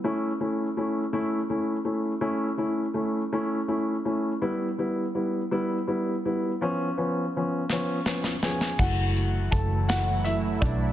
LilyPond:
<<
  \new Staff \with { instrumentName = "Upright piano" } { \time 6/8 \key a \mixolydian \tempo 4. = 55 <a cis' e'>8 <a cis' e'>8 <a cis' e'>8 <a cis' e'>8 <a cis' e'>8 <a cis' e'>8 | <a cis' e'>8 <a cis' e'>8 <a cis' e'>8 <a cis' e'>8 <a cis' e'>8 <a cis' e'>8 | <g b e'>8 <g b e'>8 <g b e'>8 <g b e'>8 <g b e'>8 <g b e'>8 | <eis b cis'>8 <eis b cis'>8 <eis b cis'>8 <eis b cis'>8 <eis b cis'>8 <eis b cis' gis' gis''>8 |
\key fis \minor <fis' fis''>4 <a' a''>8 <fis' fis''>8 <e' e''>8 <d' d''>8 | }
  \new Staff \with { instrumentName = "Upright piano" } { \time 6/8 \key a \mixolydian r2. | r2. | r2. | r2. |
\key fis \minor <fis a e'>2. | }
  \new Staff \with { instrumentName = "Analog synth pad" } { \clef bass \time 6/8 \key a \mixolydian r2. | r2. | r2. | r2. |
\key fis \minor <e fis a e'>2. | }
  \new Staff \with { instrumentName = "Fingered electric bass" } { \clef bass \time 6/8 \key a \mixolydian r2. | r2. | r2. | r2. |
\key fis \minor fis,,4 fis,,4. b,,8 | }
  \new DrumStaff \with { instrumentName = "Drums" } \drummode { \time 6/8 r4. r4. | r4. r4. | r4. r4. | r4. sn8 sn16 sn16 sn16 sn16 |
<cymc bd>8 hh8 <hh bd>8 <hh sn>8 hh8 <hh bd>8 | }
>>